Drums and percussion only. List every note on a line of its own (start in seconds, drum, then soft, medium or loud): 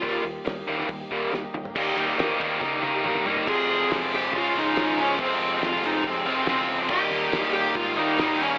0.03 kick loud
0.03 open hi-hat medium
0.46 snare loud
0.46 open hi-hat medium
0.80 snare soft
0.89 kick loud
0.89 open hi-hat medium
1.11 kick medium
1.34 snare medium
1.54 mid tom medium
1.65 floor tom medium
1.76 kick loud
1.76 crash loud
1.97 ride medium
2.19 snare loud
2.19 ride loud
2.40 kick medium
2.40 ride medium
2.61 kick loud
2.61 snare medium
2.83 high tom medium
3.04 mid tom loud
3.15 mid tom medium
3.26 floor tom loud
3.37 floor tom medium
3.47 kick loud
3.47 crash loud
3.60 snare soft
3.69 open hi-hat medium
3.91 snare loud
3.91 open hi-hat medium
4.12 open hi-hat medium
4.33 kick loud
4.33 open hi-hat loud
4.55 open hi-hat medium
4.76 snare loud
4.76 open hi-hat loud
4.98 open hi-hat medium
5.19 kick loud
5.19 open hi-hat medium
5.31 snare soft
5.40 open hi-hat medium
5.62 snare loud
5.62 open hi-hat medium
5.83 snare soft
5.83 open hi-hat medium
6.04 kick loud
6.04 open hi-hat medium
6.25 open hi-hat medium
6.46 snare loud
6.46 open hi-hat medium
6.67 open hi-hat medium
6.89 kick loud
6.89 crash loud
7.11 open hi-hat medium
7.32 snare loud
7.32 open hi-hat loud
7.54 snare soft
7.54 open hi-hat medium
7.75 kick loud
7.75 open hi-hat loud
7.97 open hi-hat medium
8.18 snare loud
8.18 open hi-hat loud
8.40 open hi-hat medium